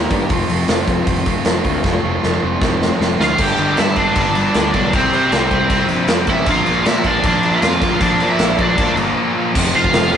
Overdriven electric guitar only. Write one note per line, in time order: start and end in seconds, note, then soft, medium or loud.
3.21 3.38 F4 medium
3.21 3.43 F5 medium
3.41 3.76 G4 medium
3.41 3.78 G5 loud
3.78 3.96 E4 medium
3.78 3.97 E5 medium
3.96 4.69 D4 medium
3.96 4.74 D5 loud
4.75 4.92 D4 medium
4.75 4.92 D5 medium
4.96 5.12 C4 medium
4.96 5.14 C5 medium
5.15 5.87 C4 medium
5.15 5.87 C5 medium
6.30 6.47 E4 medium
6.30 6.48 E5 loud
6.51 6.85 F4 medium
6.51 6.87 F5 loud
6.86 7.04 E4 medium
6.86 7.06 E5 medium
7.06 7.23 D4 medium
7.06 7.24 D5 loud
7.26 7.52 D4 medium
7.26 7.52 D5 medium
7.54 7.99 F4 medium
7.54 8.03 F5 medium
8.02 8.28 D4 medium
8.02 8.28 D5 medium
8.30 8.57 E4 medium
8.30 8.57 E5 loud
8.61 8.96 D4 medium
8.61 8.96 D5 medium
9.76 9.93 F4 medium
9.76 9.93 F5 loud
9.95 10.13 F4 medium
9.95 10.13 F5 loud